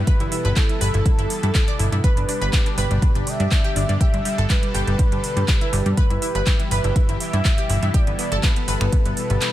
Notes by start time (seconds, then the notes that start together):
Already playing: B2 E3 G3 E4
0.07 A4 B4, kick, closed hi-hat
0.20 G1 E4, closed hi-hat
0.32 E4, open hi-hat
0.45 G1 B4, closed hi-hat
0.56 E4 A4, kick, clap, closed hi-hat
0.69 E4, closed hi-hat
0.81 G1 B4, open hi-hat
0.94 G1 E4, closed hi-hat
1.06 E4, kick, closed hi-hat
1.19 G1 E4, closed hi-hat
1.30 open hi-hat
1.43 G2 E4, closed hi-hat
1.55 E4, kick, clap, closed hi-hat
1.68 D5, closed hi-hat
1.79 G1 E4, open hi-hat
1.92 G2 E4, closed hi-hat
2.04 D3 G3 D4 G4 B4, kick, closed hi-hat
2.17 G1 D4, closed hi-hat
2.29 D4, open hi-hat
2.42 G1 B4, closed hi-hat
2.53 D4, kick, clap, closed hi-hat
2.66 D4, closed hi-hat
2.78 G1 B4, open hi-hat
2.91 G1 D4, closed hi-hat
3.02 D4, kick, closed hi-hat
3.15 G1 D4, closed hi-hat
3.27 E5, open hi-hat
3.40 G2 D4, closed hi-hat
3.51 D4, kick, clap, open hi-hat
3.64 G4, closed hi-hat
3.76 G1 D4, open hi-hat
3.89 G2 D4, closed hi-hat
4.00 G4 A4 E5, kick, closed hi-hat
4.14 G1 G3, closed hi-hat
4.25 G3, open hi-hat
4.38 G1 A4, closed hi-hat
4.50 G3 B4, kick, clap, closed hi-hat
4.63 G3, closed hi-hat
4.74 G1 G4, open hi-hat
4.87 G1 G3, closed hi-hat
4.99 G3, kick, closed hi-hat
5.12 G1 G3, closed hi-hat
5.24 open hi-hat
5.37 G2 G3, closed hi-hat
5.48 G3, kick, clap, closed hi-hat
5.61 E4, closed hi-hat
5.73 G1 G3, open hi-hat
5.86 G2 G3, closed hi-hat
5.97 B2 E3 E4 G4 B4, kick, closed hi-hat
6.10 G1 E4, closed hi-hat
6.22 E4, open hi-hat
6.35 G1 B4, closed hi-hat
6.46 E4, kick, clap, closed hi-hat
6.60 E4, closed hi-hat
6.71 G1 B4, open hi-hat
6.84 G1 E4, closed hi-hat
6.96 E4, kick, closed hi-hat
7.09 G1 E4, closed hi-hat
7.20 E5, open hi-hat
7.33 G2 E4, closed hi-hat
7.45 E4, kick, clap, open hi-hat
7.58 G4, closed hi-hat
7.70 G1 E4, open hi-hat
7.82 G2 E4, closed hi-hat
7.94 G4 A4 D5, kick, closed hi-hat
8.07 G1 B3, closed hi-hat
8.19 B3, open hi-hat
8.32 G1 A4, closed hi-hat
8.43 B3 B4, kick, clap, closed hi-hat
8.56 B3, closed hi-hat
8.68 G1 B4, open hi-hat
8.81 G1 B3, finger snap, closed hi-hat
8.92 B3, kick, closed hi-hat
9.05 G1 B3, closed hi-hat
9.17 open hi-hat
9.30 G1 B3, closed hi-hat
9.41 B3, clap, closed hi-hat